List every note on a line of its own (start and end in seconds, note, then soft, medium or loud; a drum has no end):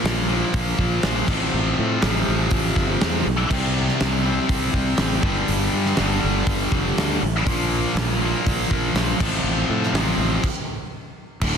0.00 0.28 A#2 medium
0.00 0.29 F3 medium
0.00 0.27 A#3 loud
0.04 0.42 A#1 medium
0.04 snare loud
0.04 open hi-hat medium
0.28 1.27 A#2 medium
0.28 1.27 F3 medium
0.28 1.27 A#3 medium
0.54 0.73 A#1 medium
0.54 kick loud
0.54 open hi-hat medium
0.78 0.98 A#1 loud
0.78 kick medium
1.03 1.23 A#1 medium
1.03 snare loud
1.03 open hi-hat medium
1.27 1.47 A1 medium
1.27 1.99 F2 medium
1.27 2.01 C3 loud
1.27 2.02 F3 medium
1.27 kick loud
1.27 crash loud
1.54 1.73 A1 medium
1.79 1.97 A2 loud
2.01 2.22 A1 medium
2.01 3.24 F2 medium
2.01 3.25 C3 medium
2.01 3.25 F3 medium
2.01 snare loud
2.01 open hi-hat medium
2.28 2.47 A1 medium
2.51 2.71 A1 loud
2.51 kick loud
2.51 open hi-hat medium
2.76 2.95 G1 medium
2.76 kick medium
2.76 snare soft
3.01 3.21 E2 medium
3.01 snare loud
3.01 open hi-hat medium
3.27 3.45 B1 medium
3.50 3.89 C2 medium
3.50 4.23 C3 medium
3.50 4.24 G3 medium
3.50 4.23 C4 medium
3.50 kick loud
3.50 crash loud
3.88 snare soft
4.00 4.39 C2 medium
4.00 snare loud
4.00 open hi-hat medium
4.24 5.21 C3 medium
4.24 5.22 G3 medium
4.24 5.22 C4 medium
4.49 4.69 C2 medium
4.49 kick loud
4.49 open hi-hat medium
4.73 4.93 C2 loud
4.73 kick medium
4.97 5.18 A1 medium
4.97 snare loud
4.97 open hi-hat medium
5.21 5.42 G1 medium
5.21 5.95 G2 medium
5.21 5.96 D3 medium
5.21 5.97 G3 loud
5.21 kick loud
5.48 5.68 G1 loud
5.48 open hi-hat medium
5.73 5.92 G2 medium
5.85 snare soft
5.96 6.18 G1 loud
5.96 7.19 G2 medium
5.96 7.20 D3 medium
5.96 7.21 G3 medium
5.96 snare loud
5.96 open hi-hat medium
6.24 6.43 G1 medium
6.47 6.66 G1 medium
6.47 kick loud
6.47 open hi-hat medium
6.72 6.91 F1 loud
6.72 kick medium
6.98 7.17 D2 medium
6.98 snare loud
6.98 open hi-hat medium
7.23 7.41 A1 medium
7.45 7.84 A#1 loud
7.45 8.19 A#2 medium
7.45 8.23 F3 loud
7.45 8.20 A#3 loud
7.45 kick loud
7.45 open hi-hat medium
7.95 8.33 A#1 loud
7.95 snare loud
7.95 open hi-hat medium
8.22 9.20 A#2 medium
8.22 9.19 F3 medium
8.22 9.18 A#3 medium
8.47 8.65 A#1 loud
8.47 kick loud
8.47 open hi-hat medium
8.71 8.89 A#1 loud
8.71 kick medium
8.94 9.13 A#1 loud
8.94 snare loud
8.94 open hi-hat medium
9.20 9.39 A1 medium
9.20 9.92 F2 loud
9.20 9.93 C3 loud
9.20 9.94 F3 loud
9.20 kick loud
9.20 crash loud
9.44 9.63 A1 loud
9.69 9.88 A2 loud
9.83 snare soft
9.94 10.13 A1 medium
9.94 10.42 F2 medium
9.94 10.43 C3 medium
9.94 snare loud
9.94 open hi-hat medium
9.98 10.44 F3 medium
10.18 10.37 A1 medium
10.44 kick loud
10.44 crash loud
11.41 11.57 D1 loud
11.41 11.57 D2 medium
11.41 11.57 A2 loud
11.41 11.57 D3 medium
11.41 kick loud
11.41 crash loud
11.54 snare soft